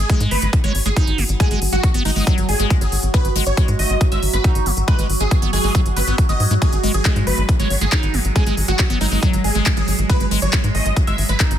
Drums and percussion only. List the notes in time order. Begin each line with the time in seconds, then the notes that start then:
0.10 kick, closed hi-hat
0.20 closed hi-hat
0.31 open hi-hat
0.42 closed hi-hat
0.53 kick, closed hi-hat
0.64 closed hi-hat
0.75 open hi-hat
0.86 closed hi-hat
0.96 kick, closed hi-hat
1.07 closed hi-hat
1.18 open hi-hat
1.29 closed hi-hat
1.40 kick, closed hi-hat
1.51 closed hi-hat
1.62 open hi-hat
1.73 closed hi-hat
1.83 kick, closed hi-hat
1.94 closed hi-hat
2.05 open hi-hat
2.16 open hi-hat
2.27 kick, closed hi-hat
2.38 closed hi-hat
2.49 open hi-hat
2.60 closed hi-hat
2.70 kick, closed hi-hat
2.81 closed hi-hat
2.92 open hi-hat
3.03 closed hi-hat
3.14 kick, closed hi-hat
3.25 closed hi-hat
3.36 open hi-hat
3.47 closed hi-hat
3.57 kick, closed hi-hat
3.68 closed hi-hat
3.79 open hi-hat
3.90 closed hi-hat
4.01 kick, closed hi-hat
4.12 closed hi-hat
4.23 open hi-hat
4.33 closed hi-hat
4.44 kick, closed hi-hat
4.55 closed hi-hat
4.66 open hi-hat
4.77 closed hi-hat
4.88 kick, closed hi-hat
4.99 closed hi-hat
5.10 open hi-hat
5.20 closed hi-hat
5.31 kick, closed hi-hat
5.42 closed hi-hat
5.53 open hi-hat
5.64 open hi-hat
5.75 kick, closed hi-hat
5.86 closed hi-hat
5.96 open hi-hat
6.07 closed hi-hat
6.18 kick, closed hi-hat
6.29 closed hi-hat
6.40 open hi-hat
6.51 closed hi-hat
6.62 kick, closed hi-hat
6.73 closed hi-hat
6.83 open hi-hat
6.94 closed hi-hat
7.05 kick, clap, closed hi-hat
7.16 closed hi-hat
7.27 open hi-hat
7.38 closed hi-hat
7.49 kick, closed hi-hat
7.60 closed hi-hat
7.70 open hi-hat
7.81 closed hi-hat
7.92 kick, clap, closed hi-hat
8.03 closed hi-hat
8.14 open hi-hat
8.25 closed hi-hat
8.36 kick, closed hi-hat
8.46 closed hi-hat
8.57 open hi-hat
8.68 closed hi-hat
8.79 kick, clap, closed hi-hat
8.90 closed hi-hat
9.01 open hi-hat
9.12 open hi-hat
9.23 kick, closed hi-hat
9.33 closed hi-hat
9.44 open hi-hat
9.55 closed hi-hat
9.66 kick, clap, closed hi-hat
9.77 closed hi-hat
9.88 open hi-hat
9.99 closed hi-hat
10.10 kick, closed hi-hat
10.20 closed hi-hat
10.31 open hi-hat
10.42 closed hi-hat
10.53 kick, clap, closed hi-hat
10.64 closed hi-hat
10.75 open hi-hat
10.86 closed hi-hat
10.96 kick, closed hi-hat
11.07 closed hi-hat
11.18 open hi-hat
11.29 closed hi-hat
11.40 kick, clap, closed hi-hat
11.51 closed hi-hat